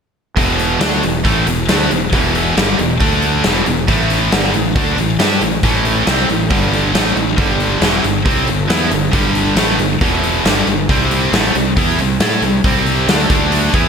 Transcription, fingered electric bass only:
0, 0, Header, 1, 2, 480
1, 0, Start_track
1, 0, Key_signature, 1, "minor"
1, 0, Tempo, 438276
1, 402, Time_signature, 4, 2, 24, 8
1, 15206, End_track
2, 0, Start_track
2, 0, Title_t, "Fingered electric bass"
2, 0, Program_c, 0, 33
2, 401, Note_on_c, 0, 28, 97
2, 849, Note_off_c, 0, 28, 0
2, 872, Note_on_c, 0, 38, 106
2, 1100, Note_off_c, 0, 38, 0
2, 1121, Note_on_c, 0, 28, 81
2, 1346, Note_off_c, 0, 28, 0
2, 1368, Note_on_c, 0, 33, 76
2, 1589, Note_off_c, 0, 33, 0
2, 1599, Note_on_c, 0, 28, 84
2, 1825, Note_off_c, 0, 28, 0
2, 1845, Note_on_c, 0, 38, 99
2, 2068, Note_off_c, 0, 38, 0
2, 2092, Note_on_c, 0, 28, 75
2, 2312, Note_off_c, 0, 28, 0
2, 2324, Note_on_c, 0, 28, 100
2, 2771, Note_off_c, 0, 28, 0
2, 2815, Note_on_c, 0, 31, 104
2, 3034, Note_off_c, 0, 31, 0
2, 3056, Note_on_c, 0, 28, 78
2, 3274, Note_off_c, 0, 28, 0
2, 3293, Note_on_c, 0, 38, 95
2, 3736, Note_off_c, 0, 38, 0
2, 3778, Note_on_c, 0, 28, 98
2, 3996, Note_off_c, 0, 28, 0
2, 4021, Note_on_c, 0, 28, 75
2, 4237, Note_off_c, 0, 28, 0
2, 4254, Note_on_c, 0, 33, 99
2, 4697, Note_off_c, 0, 33, 0
2, 4735, Note_on_c, 0, 31, 109
2, 4954, Note_off_c, 0, 31, 0
2, 4968, Note_on_c, 0, 33, 81
2, 5191, Note_off_c, 0, 33, 0
2, 5209, Note_on_c, 0, 38, 81
2, 5431, Note_off_c, 0, 38, 0
2, 5445, Note_on_c, 0, 33, 75
2, 5669, Note_off_c, 0, 33, 0
2, 5679, Note_on_c, 0, 43, 100
2, 5906, Note_off_c, 0, 43, 0
2, 5930, Note_on_c, 0, 33, 74
2, 6152, Note_off_c, 0, 33, 0
2, 6167, Note_on_c, 0, 33, 91
2, 6614, Note_off_c, 0, 33, 0
2, 6649, Note_on_c, 0, 36, 105
2, 6871, Note_off_c, 0, 36, 0
2, 6890, Note_on_c, 0, 33, 81
2, 7112, Note_off_c, 0, 33, 0
2, 7127, Note_on_c, 0, 31, 82
2, 7574, Note_off_c, 0, 31, 0
2, 7603, Note_on_c, 0, 33, 98
2, 7828, Note_off_c, 0, 33, 0
2, 7837, Note_on_c, 0, 33, 70
2, 8065, Note_off_c, 0, 33, 0
2, 8081, Note_on_c, 0, 31, 95
2, 8530, Note_off_c, 0, 31, 0
2, 8557, Note_on_c, 0, 28, 105
2, 8784, Note_off_c, 0, 28, 0
2, 8803, Note_on_c, 0, 31, 85
2, 9028, Note_off_c, 0, 31, 0
2, 9040, Note_on_c, 0, 36, 87
2, 9266, Note_off_c, 0, 36, 0
2, 9283, Note_on_c, 0, 31, 73
2, 9508, Note_off_c, 0, 31, 0
2, 9527, Note_on_c, 0, 40, 98
2, 9749, Note_off_c, 0, 40, 0
2, 9766, Note_on_c, 0, 31, 79
2, 9989, Note_off_c, 0, 31, 0
2, 10001, Note_on_c, 0, 31, 95
2, 10450, Note_off_c, 0, 31, 0
2, 10470, Note_on_c, 0, 33, 103
2, 10700, Note_off_c, 0, 33, 0
2, 10715, Note_on_c, 0, 31, 84
2, 10943, Note_off_c, 0, 31, 0
2, 10961, Note_on_c, 0, 28, 90
2, 11409, Note_off_c, 0, 28, 0
2, 11442, Note_on_c, 0, 31, 103
2, 11667, Note_off_c, 0, 31, 0
2, 11680, Note_on_c, 0, 31, 76
2, 11905, Note_off_c, 0, 31, 0
2, 11924, Note_on_c, 0, 36, 103
2, 12371, Note_off_c, 0, 36, 0
2, 12404, Note_on_c, 0, 33, 106
2, 12628, Note_off_c, 0, 33, 0
2, 12650, Note_on_c, 0, 36, 85
2, 12871, Note_off_c, 0, 36, 0
2, 12888, Note_on_c, 0, 40, 91
2, 13110, Note_off_c, 0, 40, 0
2, 13126, Note_on_c, 0, 36, 72
2, 13349, Note_off_c, 0, 36, 0
2, 13362, Note_on_c, 0, 45, 95
2, 13587, Note_off_c, 0, 45, 0
2, 13600, Note_on_c, 0, 36, 79
2, 13826, Note_off_c, 0, 36, 0
2, 13845, Note_on_c, 0, 36, 106
2, 14292, Note_off_c, 0, 36, 0
2, 14316, Note_on_c, 0, 38, 102
2, 14544, Note_off_c, 0, 38, 0
2, 14565, Note_on_c, 0, 38, 90
2, 15012, Note_off_c, 0, 38, 0
2, 15043, Note_on_c, 0, 40, 96
2, 15206, Note_off_c, 0, 40, 0
2, 15206, End_track
0, 0, End_of_file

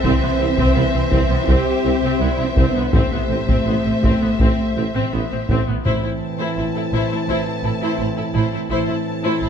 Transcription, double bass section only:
0, 0, Header, 1, 2, 480
1, 0, Start_track
1, 0, Key_signature, 0, "minor"
1, 0, Tempo, 727273
1, 25, Time_signature, 4, 2, 24, 8
1, 3865, Tempo, 710900
1, 6320, End_track
2, 0, Start_track
2, 0, Title_t, "Double bass section"
2, 0, Program_c, 0, 48
2, 24, Note_on_c, 0, 36, 62
2, 71, Note_off_c, 0, 36, 0
2, 143, Note_on_c, 0, 36, 42
2, 190, Note_off_c, 0, 36, 0
2, 262, Note_on_c, 0, 36, 40
2, 308, Note_off_c, 0, 36, 0
2, 378, Note_on_c, 0, 36, 63
2, 425, Note_off_c, 0, 36, 0
2, 496, Note_on_c, 0, 36, 42
2, 543, Note_off_c, 0, 36, 0
2, 615, Note_on_c, 0, 36, 39
2, 663, Note_off_c, 0, 36, 0
2, 736, Note_on_c, 0, 36, 57
2, 784, Note_off_c, 0, 36, 0
2, 859, Note_on_c, 0, 36, 40
2, 906, Note_off_c, 0, 36, 0
2, 978, Note_on_c, 0, 36, 63
2, 1025, Note_off_c, 0, 36, 0
2, 1217, Note_on_c, 0, 36, 35
2, 1264, Note_off_c, 0, 36, 0
2, 1335, Note_on_c, 0, 36, 46
2, 1383, Note_off_c, 0, 36, 0
2, 1454, Note_on_c, 0, 36, 35
2, 1502, Note_off_c, 0, 36, 0
2, 1574, Note_on_c, 0, 36, 34
2, 1622, Note_off_c, 0, 36, 0
2, 1697, Note_on_c, 0, 36, 54
2, 1744, Note_off_c, 0, 36, 0
2, 1816, Note_on_c, 0, 36, 38
2, 1864, Note_off_c, 0, 36, 0
2, 1934, Note_on_c, 0, 33, 52
2, 1982, Note_off_c, 0, 33, 0
2, 2056, Note_on_c, 0, 33, 40
2, 2104, Note_off_c, 0, 33, 0
2, 2179, Note_on_c, 0, 33, 36
2, 2227, Note_off_c, 0, 33, 0
2, 2297, Note_on_c, 0, 33, 47
2, 2346, Note_off_c, 0, 33, 0
2, 2418, Note_on_c, 0, 33, 35
2, 2467, Note_off_c, 0, 33, 0
2, 2541, Note_on_c, 0, 33, 36
2, 2590, Note_off_c, 0, 33, 0
2, 2661, Note_on_c, 0, 33, 52
2, 2709, Note_off_c, 0, 33, 0
2, 2783, Note_on_c, 0, 33, 38
2, 2831, Note_off_c, 0, 33, 0
2, 2904, Note_on_c, 0, 33, 55
2, 2952, Note_off_c, 0, 33, 0
2, 3145, Note_on_c, 0, 33, 37
2, 3193, Note_off_c, 0, 33, 0
2, 3264, Note_on_c, 0, 33, 43
2, 3312, Note_off_c, 0, 33, 0
2, 3387, Note_on_c, 0, 33, 34
2, 3434, Note_off_c, 0, 33, 0
2, 3506, Note_on_c, 0, 33, 35
2, 3554, Note_off_c, 0, 33, 0
2, 3623, Note_on_c, 0, 33, 52
2, 3671, Note_off_c, 0, 33, 0
2, 3744, Note_on_c, 0, 33, 38
2, 3792, Note_off_c, 0, 33, 0
2, 3864, Note_on_c, 0, 33, 43
2, 3913, Note_off_c, 0, 33, 0
2, 4346, Note_on_c, 0, 33, 30
2, 4395, Note_off_c, 0, 33, 0
2, 4585, Note_on_c, 0, 33, 44
2, 4634, Note_off_c, 0, 33, 0
2, 4826, Note_on_c, 0, 33, 45
2, 4875, Note_off_c, 0, 33, 0
2, 5064, Note_on_c, 0, 33, 32
2, 5113, Note_off_c, 0, 33, 0
2, 5306, Note_on_c, 0, 33, 33
2, 5355, Note_off_c, 0, 33, 0
2, 5544, Note_on_c, 0, 33, 46
2, 5593, Note_off_c, 0, 33, 0
2, 5786, Note_on_c, 0, 33, 47
2, 5834, Note_off_c, 0, 33, 0
2, 6264, Note_on_c, 0, 33, 38
2, 6313, Note_off_c, 0, 33, 0
2, 6320, End_track
0, 0, End_of_file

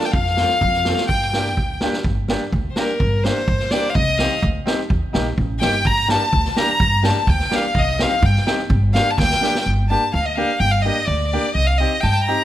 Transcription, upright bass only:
0, 0, Header, 1, 2, 480
1, 0, Start_track
1, 0, Key_signature, -2, "minor"
1, 0, Tempo, 475059
1, 149, Time_signature, 2, 2, 24, 8
1, 12569, End_track
2, 0, Start_track
2, 0, Title_t, "Upright bass"
2, 0, Program_c, 0, 32
2, 136, Note_on_c, 0, 41, 97
2, 428, Note_off_c, 0, 41, 0
2, 621, Note_on_c, 0, 41, 106
2, 912, Note_off_c, 0, 41, 0
2, 1103, Note_on_c, 0, 43, 81
2, 1590, Note_off_c, 0, 43, 0
2, 1590, Note_on_c, 0, 38, 106
2, 1879, Note_off_c, 0, 38, 0
2, 2068, Note_on_c, 0, 31, 77
2, 2358, Note_off_c, 0, 31, 0
2, 2555, Note_on_c, 0, 38, 105
2, 2699, Note_off_c, 0, 38, 0
2, 3039, Note_on_c, 0, 31, 96
2, 3326, Note_off_c, 0, 31, 0
2, 3513, Note_on_c, 0, 43, 105
2, 3657, Note_off_c, 0, 43, 0
2, 4001, Note_on_c, 0, 36, 94
2, 4287, Note_off_c, 0, 36, 0
2, 4475, Note_on_c, 0, 38, 110
2, 4619, Note_off_c, 0, 38, 0
2, 4958, Note_on_c, 0, 39, 82
2, 5101, Note_off_c, 0, 39, 0
2, 5201, Note_on_c, 0, 34, 92
2, 5414, Note_off_c, 0, 34, 0
2, 5433, Note_on_c, 0, 33, 88
2, 5649, Note_off_c, 0, 33, 0
2, 5694, Note_on_c, 0, 31, 75
2, 5900, Note_off_c, 0, 31, 0
2, 5913, Note_on_c, 0, 43, 96
2, 6201, Note_off_c, 0, 43, 0
2, 6394, Note_on_c, 0, 38, 109
2, 6538, Note_off_c, 0, 38, 0
2, 6869, Note_on_c, 0, 43, 100
2, 7157, Note_off_c, 0, 43, 0
2, 7347, Note_on_c, 0, 38, 117
2, 7492, Note_off_c, 0, 38, 0
2, 7827, Note_on_c, 0, 36, 89
2, 8115, Note_off_c, 0, 36, 0
2, 8309, Note_on_c, 0, 43, 117
2, 8452, Note_off_c, 0, 43, 0
2, 8787, Note_on_c, 0, 31, 112
2, 9075, Note_off_c, 0, 31, 0
2, 9277, Note_on_c, 0, 38, 122
2, 9417, Note_off_c, 0, 38, 0
2, 9763, Note_on_c, 0, 31, 87
2, 10045, Note_off_c, 0, 31, 0
2, 10244, Note_on_c, 0, 38, 104
2, 10526, Note_off_c, 0, 38, 0
2, 10710, Note_on_c, 0, 31, 96
2, 10996, Note_off_c, 0, 31, 0
2, 11190, Note_on_c, 0, 38, 95
2, 11477, Note_off_c, 0, 38, 0
2, 11670, Note_on_c, 0, 36, 86
2, 11956, Note_off_c, 0, 36, 0
2, 12158, Note_on_c, 0, 43, 105
2, 12442, Note_off_c, 0, 43, 0
2, 12569, End_track
0, 0, End_of_file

